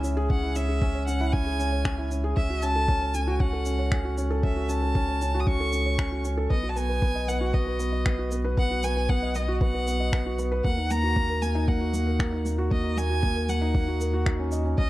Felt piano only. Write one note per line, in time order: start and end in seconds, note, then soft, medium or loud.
0.00 0.04 C#4 loud
0.00 0.16 C#4 medium
0.00 0.43 E4 loud
0.00 0.17 G#4 medium
0.00 0.95 C#5 medium
0.17 0.29 G#4 loud
0.30 0.42 C#4 medium
0.43 0.55 E4 medium
0.56 0.68 C#4 medium
0.69 0.81 G#4 medium
0.82 0.94 C#4 loud
0.95 1.07 C#5 medium
1.08 1.20 C#4 medium
1.20 1.33 E4 loud
1.33 1.46 C#4 medium
1.46 1.59 G#4 medium
1.59 1.72 C#4 medium
1.72 1.80 C#5 medium
1.85 1.97 C#4 medium
1.98 2.10 E4 medium
2.11 2.23 C#4 medium
2.24 2.36 G#4 loud
2.37 2.49 C#4 medium
2.50 2.62 F#4 medium
2.63 2.75 C#4 medium
2.76 2.88 A4 medium
2.89 3.01 C#4 loud
3.02 3.14 C#5 medium
3.14 3.27 C#4 medium
3.27 3.40 F#4 loud
3.40 3.52 C#4 medium
3.53 3.65 A4 medium
3.66 3.78 C#4 medium
3.79 3.86 C#5 medium
3.92 4.04 C#4 medium
4.05 4.17 F#4 medium
4.18 4.30 C#4 medium
4.30 4.43 A4 loud
4.44 4.56 C#4 medium
4.56 4.69 F#4 medium
4.69 4.82 C#4 medium
4.82 4.95 A4 medium
4.96 5.08 C#4 medium
5.09 5.21 C#5 medium
5.22 5.34 C#4 medium
5.34 5.47 F#4 loud
5.47 5.59 C#4 medium
5.60 5.72 A4 medium
5.73 5.85 C#4 medium
5.86 5.93 C#5 medium
5.99 6.11 C#4 medium
6.12 6.24 F#4 medium
6.25 6.37 C#4 medium
6.37 6.50 A4 loud
6.50 6.63 B3 medium
6.63 6.76 F#4 medium
6.76 6.88 B3 medium
6.89 7.02 B4 medium
7.02 7.15 B3 loud
7.15 7.28 D#5 medium
7.28 7.40 B3 medium
7.41 7.53 F#4 loud
7.54 7.66 B3 medium
7.67 7.79 B4 medium
7.79 7.92 B3 medium
7.92 8.00 D#5 medium
8.06 8.18 B3 medium
8.19 8.31 F#4 medium
8.32 8.44 B3 medium
8.44 8.57 B4 loud
8.58 8.70 B3 medium
8.71 8.83 F#4 medium
8.84 8.96 B3 medium
8.96 9.09 B4 medium
9.09 9.22 B3 loud
9.23 9.35 D#5 medium
9.36 9.48 B3 medium
9.48 9.60 F#4 loud
9.61 9.74 B3 medium
9.74 9.86 B4 medium
9.87 9.99 B3 medium
10.00 10.07 D#5 medium
10.13 10.25 B3 medium
10.26 10.38 F#4 medium
10.39 10.51 B3 medium
10.52 10.64 B4 loud
10.64 10.77 A#3 medium
10.77 10.90 D#4 medium
10.90 11.03 A#3 medium
11.03 11.16 F#4 medium
11.16 11.29 A#3 medium
11.30 11.42 A#4 medium
11.42 11.54 A#3 medium
11.55 11.67 D#4 loud
11.68 11.80 A#3 medium
11.81 11.93 F#4 medium
11.94 12.06 A#3 medium
12.06 12.14 A#4 medium
12.20 12.32 A#3 medium
12.33 12.45 D#4 medium
12.45 12.58 A#3 medium
12.58 12.71 F#4 medium
12.71 12.83 A#3 medium
12.84 12.96 D#4 medium
12.97 13.09 A#3 medium
13.10 13.22 F#4 medium
13.23 13.35 A#3 loud
13.36 13.48 A#4 medium
13.49 13.61 A#3 medium
13.62 13.74 D#4 loud
13.75 13.87 A#3 medium
13.88 14.00 F#4 medium
14.01 14.13 A#4 medium
14.13 14.26 F#4 medium
14.27 14.39 D#4 medium
14.39 14.52 C#4 medium
14.52 14.64 D#5 medium
14.65 14.76 C#4 medium
14.78 14.90 C#4 medium